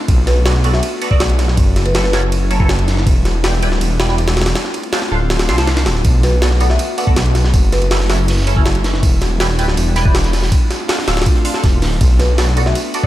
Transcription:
Already playing: A3 D4
0.08 B1 B3 F#4, kick, ride
0.27 B4, snare, ride
0.46 B3 F#4 A4 D5, snare, ride
0.55 snare
0.64 B3 F#4 A4 D5, ride
0.74 E5, snare
0.83 ride
1.02 B3 F#4 A4 D5, ride
1.11 B3 F#4 A4 D5, kick
1.20 B1 D5, snare, ride
1.30 ride
1.39 snare, ride
1.48 snare
1.57 F#1 F#3 C#4 E4, kick, ride
1.76 snare, ride
1.86 F#1 B4, ride
1.95 F#3 C#4 E4 A4, snare, ride
2.04 B4, snare
2.13 F#3 C#4 E4 A4, snare, ride
2.32 ride
2.51 F#3 C#4 E4 A4, ride
2.60 F#3 C#4 E4 A4, kick
2.69 snare, ride
2.79 ride
2.88 snare, ride
2.97 snare
3.07 E1 G3 B3 D4, kick, ride
3.25 snare, ride
3.44 E4 B4 D5 G5, snare, ride
3.53 snare
3.62 D1 E4 B4 D5 G5, ride
3.72 snare
3.81 E1, ride
4.00 E4 B4 D5 G5, snare, ride
4.09 E4 B4 D5 G5, snare
4.18 ride
4.28 snare, ride
4.37 snare, ride
4.42 snare, ride
4.46 snare, ride
4.55 A3 C4 F4, snare, ride
4.65 snare
4.74 ride
4.83 ride
4.93 D4 A4 C5 F5, snare, ride
5.02 snare
5.12 D1 D4 A4 C5 F5
5.30 snare, ride
5.39 snare, ride
5.49 C2 D4 A4 C5 F5, snare, ride
5.58 D4 A4 C5 F5, snare, ride
5.67 snare, ride
5.77 snare, ride
5.86 D1, snare, ride
5.95 snare
6.04 B1 B3 F#4, kick, ride, tambourine
6.23 B4, snare, ride, tambourine
6.42 B3 F#4 A4 D5, snare, ride, tambourine
6.51 snare
6.60 B3 F#4 A4 D5, ride, tambourine
6.70 E5, snare
6.79 ride, tambourine
6.98 B3 F#4 A4 D5 F#5, ride, tambourine
7.07 B3 F#4 A4 D5, kick
7.16 B1, snare, ride, tambourine
7.26 ride
7.35 snare, ride, tambourine
7.44 snare
7.54 F#1 F#3 C#4 E4, kick, ride, tambourine
7.72 B4, snare, ride, tambourine
7.82 F#1, ride
7.91 F#3 C#4 E4 A4, snare, open hi-hat, ride
8.00 snare
8.10 F#3 C#4 E4 A4, snare, ride, tambourine
8.28 snare, ride, tambourine
8.33 snare, tambourine
8.37 snare, tambourine
8.42 snare, tambourine
8.47 F#3 C#4 E4 A4, ride, tambourine
8.56 F#3 C#4 E4 A4, kick
8.66 snare, ride, tambourine
8.75 ride
8.84 snare, ride, tambourine
8.94 snare
9.03 E1 G3 B3 D4, kick, ride, tambourine
9.21 snare, ride, tambourine
9.40 E4 B4 D5 G5, snare, ride, tambourine
9.50 snare
9.58 D1 E4 B4 D5 G5, ride, tambourine
9.68 snare
9.77 E1, ride, tambourine
9.96 E4 B4 D5 G5, snare, ride, tambourine
10.05 E4 B4 D5 G5, kick
10.15 snare, ride, tambourine
10.24 snare, ride, tambourine
10.33 snare, ride, tambourine
10.43 snare, tambourine
10.52 A3 C4 D4 F4, kick, ride, tambourine
10.70 snare, ride, tambourine
10.88 D4 A4 C5 F5, snare, open hi-hat, ride
10.98 snare
11.08 D1 D4 A4 C5 F5, snare, ride, tambourine
11.17 snare, ride
11.22 snare, ride
11.26 kick, ride, tambourine
11.35 closed hi-hat
11.45 D4 A4 C5 F5, open hi-hat, tambourine
11.54 D4 A4 C5 F5, snare
11.64 E1, kick, snare, ride, tambourine
11.82 D1, snare, open hi-hat, ride
11.92 snare
12.01 B1 B3 D4 F#4, kick, ride, tambourine
12.19 B4, snare, ride, tambourine
12.38 B3 F#4 A4 D5, snare, ride, tambourine
12.48 snare
12.57 B3 F#4 A4 D5, ride, tambourine
12.66 E5, snare
12.75 ride, tambourine
12.94 B3 F#4 A4 D5, ride, tambourine
13.03 F#4 D5, kick

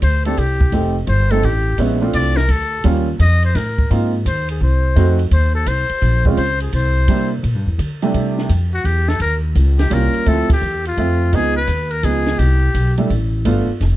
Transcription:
0.02 D2 C5, kick, hi-hat pedal, ride
0.25 A3 C4 D4 G4 A4, ride
0.37 C2 G4, kick, ride
0.61 kick
0.72 F1 A3 C4 D#4 G4, kick, ride
1.07 G1 C5, kick, hi-hat pedal, ride
1.31 A3 C4 D#4 A4, ride
1.43 A1 G4, kick, ride
1.78 A#1 G#3 B3 C#4 E4, kick, ride
2.01 A3 C4 D4 F4
2.13 C2 D5, kick, hi-hat pedal, ride
2.37 A#4, snare
2.49 D2 A4, kick, ride
2.84 D#2 G3 A#3 C#4 F4, kick, ride
3.19 F2 D#5, kick, hi-hat pedal, ride
3.42 C5, ride
3.55 A2 A#4, kick, snare, ride
3.78 kick
3.90 G#2 A#3 C4 D#4 F4, kick, ride
4.26 D#2 C5, kick, hi-hat pedal, ride
4.49 G#4, ride
4.61 C2 C5, kick
4.96 F2 A3 C4 D#4 F#4, kick, ride
5.19 ride
5.31 D#2 C5, kick, ride
5.55 A4
5.66 C2 C5, kick, hi-hat pedal, ride
5.89 muted upright bass stroke, ride
6.02 A#1, kick, ride
6.25 G#3 C4 C#4 F4, kick
6.37 C#2 C5, kick, hi-hat pedal, ride
6.60 G#4, ride
6.73 C2 C5, kick, ride
7.08 C3 G3 A#3 D4 E4, kick, ride
7.43 A#2, kick, ride
7.55 G2
7.66 E2
7.78 D3, kick, hi-hat pedal, ride
8.02 C3 G3 A3 D4 E4, ride
8.14 C3, kick, ride
8.38 snare
8.49 F2, kick, hi-hat pedal, ride
8.74 F#4
8.84 E2 G4, kick, ride
9.08 A4, snare
9.20 D#2 A#4, kick, ride
9.55 C#2, kick, hi-hat pedal, ride
9.79 G4, snare, ride
9.90 C2 G3 A#3 C#4 F4 A#4, kick, hi-hat pedal, ride
10.14 muted upright bass stroke, ride
10.26 D2 F3 A3 C4 E4 A4, kick, ride
10.49 G4, muted upright bass stroke, kick, ride
10.62 E2, hi-hat pedal
10.85 F4, ride
10.97 F2 F3 A3 C4 E5, kick, ride
11.32 C#2 F3 G#3 B3 D#4 G#4, kick, ride
11.56 B4
11.67 D#2, kick, hi-hat pedal, ride
11.91 A#4, ride
12.03 C#2 F3 G#3 B3 D#4 G#4, kick, hi-hat pedal, ride
12.26 snare, ride
12.39 C2 G4, kick, ride
12.74 B1, kick, hi-hat pedal, ride
12.98 G3 A3 D4 E4, ride
13.10 A1, kick, ride
13.45 G1 A3 B3 D4 F4, kick, ride
13.68 muted upright bass stroke
13.81 F1, kick, snare, ride

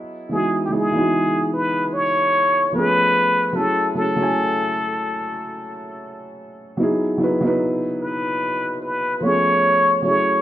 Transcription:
Already playing: F#3 B3 E4 G#4 D#5
0.29 E3 G#3 B3 G#4
0.34 D#4 F#4
0.65 E3 G4
0.70 G#3 B3 D#4 G#4
0.74 G#4
0.92 E3 G#3 B3
0.96 D#4 F#4
1.54 B4
1.93 C#5
2.72 F3 A3 B3 B4
2.77 C#4 G#4
3.53 F#3 A3 C#4 A4
3.57 E4 G#4
3.95 F#3 A3 C#4 A4
3.99 E4 G#4
4.16 F#3 A3 C#4
4.21 E4 G#5
6.77 F#3 B3 D#4
6.81 E4 G#4
7.18 F#3 B3 D#4
7.22 E4 B4
7.41 F#3 B3 D#4
7.45 E4 B4
8.02 B4
8.82 B4
9.20 F3 A3 B3 C#5
9.25 C#4 G#4
10.02 F#3 A3 C#4 C#5
10.06 E4 G#4

